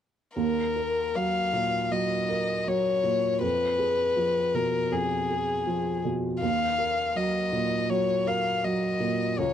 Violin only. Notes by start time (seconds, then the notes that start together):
0.36 A#4
1.16 F5
1.92 D#5
2.68 C#5
3.43 B4
4.54 A#4
4.92 G#4
6.41 F5
7.16 D#5
7.90 C#5
8.27 F5
8.64 D#5
9.38 C#5